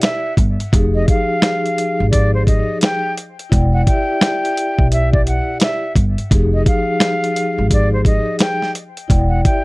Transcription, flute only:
0.02 0.34 E5 medium
0.95 1.06 D#5 medium
1.09 2.09 F5 medium
2.11 2.31 D5 loud
2.34 2.46 C5 medium
2.47 2.78 D#5 medium
2.82 3.14 G5 medium
3.73 3.85 F#5 medium
3.87 4.88 G5 medium
4.93 5.12 E5 medium
5.13 5.25 D5 medium
5.27 5.58 F#5 medium
5.62 5.93 E5 medium
6.54 6.65 D#5 medium
6.67 7.67 F5 medium
7.73 7.92 D5 medium
7.93 8.05 C5 medium
8.06 8.37 D#5 medium
8.40 8.72 G5 medium
9.29 9.42 F#5 medium
9.44 9.64 G5 medium

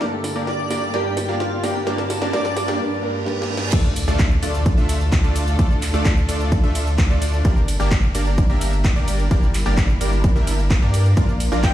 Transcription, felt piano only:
0.00 0.91 G2 medium
0.00 0.92 G3 medium
0.00 0.92 A#3 medium
0.00 0.92 D4 medium
0.00 0.93 A#4 medium
0.92 1.84 G2 loud
0.92 1.85 G3 medium
0.92 1.85 A#3 medium
0.92 1.85 D4 medium
0.92 1.86 A#4 loud
1.86 2.31 G2 loud
1.86 2.31 G3 medium
1.86 2.32 A#3 medium
1.86 2.32 D4 medium
1.86 2.32 A#4 loud
2.32 2.77 G2 loud
2.32 2.78 G3 medium
2.32 2.78 A#3 medium
2.32 2.78 D4 medium
2.32 2.79 A#4 loud
2.79 3.01 G2 loud
2.79 3.01 G3 medium
2.79 3.01 A#3 medium
2.79 3.02 D4 loud
2.79 3.02 A#4 loud
3.02 3.24 G2 loud
3.02 3.24 G3 medium
3.02 3.25 A#3 medium
3.02 3.25 D4 medium
3.02 3.25 A#4 loud
3.25 3.47 G2 loud
3.25 3.48 G3 medium
3.25 3.48 A#3 medium
3.25 3.48 D4 medium
3.25 3.48 A#4 loud
3.49 3.71 G2 loud
3.49 3.71 G3 medium
3.49 3.71 A#3 medium
3.49 3.71 D4 medium
3.49 3.72 A#4 loud
11.16 11.74 A#2 medium
11.16 11.74 F3 medium
11.16 11.74 A#3 medium
11.16 11.74 D4 medium
11.16 11.74 A#4 loud

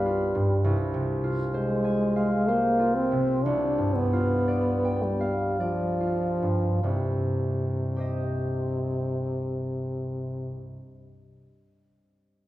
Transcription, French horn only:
0.00 0.62 G3 soft
1.54 2.49 G#3 medium
2.48 2.96 A#3 soft
2.95 3.46 C4 medium
3.45 3.96 D4 soft
3.94 5.04 B3 soft
5.02 5.61 G3 soft
5.60 6.82 F3 soft
6.83 10.61 C3 soft

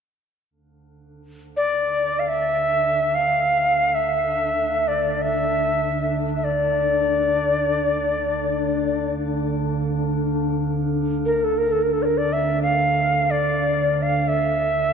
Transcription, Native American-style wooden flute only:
1.57 2.21 D5 medium
2.19 2.30 F5 medium
2.28 3.16 E5 medium
3.15 3.96 F5 medium
3.95 4.89 E5 medium
4.88 5.24 D5 medium
5.22 6.16 E5 medium
6.37 6.46 E5 soft
6.44 9.10 D5 medium
11.26 11.46 A#4 medium
11.44 11.60 A4 medium
11.58 11.74 A#4 medium
11.72 11.84 A4 medium
11.82 11.94 A#4 medium
11.93 12.04 A4 medium
12.02 12.19 A#4 medium
12.02 12.06 D5 soft
12.18 12.34 D5 medium
12.33 12.62 E5 medium
12.62 13.32 F5 medium
13.31 14.04 D5 medium
14.02 14.29 F5 medium
14.28 14.93 E5 medium

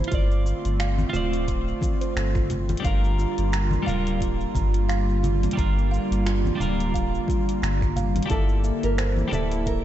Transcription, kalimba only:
0.11 0.29 F4 loud
0.46 0.63 C6 medium
0.80 0.90 F5 loud
1.13 1.31 F4 loud
1.48 1.65 C6 medium
1.81 2.00 F4 medium
2.01 2.15 C5 medium
2.17 2.27 A4 medium
2.35 2.49 F4 medium
2.50 2.67 F4 medium
2.69 2.84 F4 medium
2.85 2.95 F5 loud
3.19 3.36 F4 medium
3.52 3.70 A#5 medium
3.86 3.97 F5 loud
4.20 4.38 F4 loud
4.55 4.72 A#5 medium
4.89 4.99 F5 loud
5.23 5.40 F4 loud
5.57 5.74 A#5 medium
5.91 6.02 F5 medium
6.26 6.43 F4 loud
6.60 6.77 A#5 medium
6.94 7.04 F5 loud
7.28 7.45 F4 medium
7.62 7.79 A#5 medium
7.96 8.06 F5 loud
8.30 8.47 E4 loud
8.64 8.81 E5 medium
8.98 9.08 C5 loud
9.32 9.49 E4 loud
9.66 9.83 E5 medium

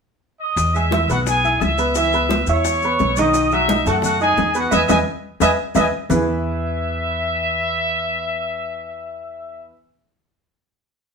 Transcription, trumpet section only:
0.41 0.73 D#5 medium
0.41 0.74 D#6 medium
0.75 1.09 E5 loud
0.75 1.10 E6 medium
1.10 1.19 F#4 medium
1.10 1.18 F#5 medium
1.26 1.59 G#4 medium
1.26 1.59 G#5 loud
1.62 1.96 E5 medium
1.62 1.96 E6 medium
1.98 2.45 E5 medium
1.98 2.45 E6 medium
2.50 3.18 C#5 medium
2.50 3.18 C#6 medium
3.18 3.52 D#5 medium
3.18 3.52 D#6 medium
3.53 3.84 E5 loud
3.53 3.85 E6 medium
3.88 3.96 F#4 medium
3.88 3.96 F#5 medium
4.04 4.20 F#4 medium
4.04 4.20 F#5 loud
4.21 4.53 G#4 medium
4.21 4.53 G#5 loud
4.57 4.72 F#4 medium
4.57 4.72 F#5 medium
4.73 4.81 D#5 medium
4.73 4.81 E5 medium
4.73 4.81 G#5 medium
4.88 4.97 D#5 loud
4.88 4.97 E5 medium
4.88 4.97 G#5 loud
5.42 5.50 D#5 medium
5.42 5.50 E5 medium
5.42 5.50 G#5 medium
5.77 5.85 D#5 medium
5.77 5.85 E5 medium
5.77 5.85 G#5 medium
6.12 9.65 E5 medium

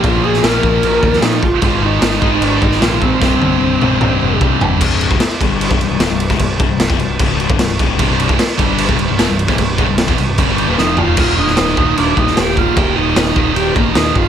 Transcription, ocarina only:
0.05 0.26 F4 loud
0.25 0.46 G#4 loud
0.44 1.24 A#4 loud
1.23 1.43 D#4 loud
1.44 1.62 F4 loud
1.64 1.86 F4 loud
1.85 2.45 D#4 loud
2.44 2.64 D4 loud
2.63 2.82 D#4 loud
2.80 3.01 F4 loud
3.03 4.38 C4 loud
10.79 11.00 D#4 medium
10.98 11.16 F4 medium
11.17 11.36 F4 medium
11.38 11.99 D#4 loud
11.97 12.16 D4 medium
12.17 12.37 D#4 medium
12.36 12.56 G4 medium
12.58 12.80 F4 medium
12.78 12.98 G4 loud
12.97 13.55 D#4 loud
13.56 13.77 G4 loud
13.76 13.93 A#3 loud
13.94 14.17 D#4 medium
14.16 14.28 F4 loud

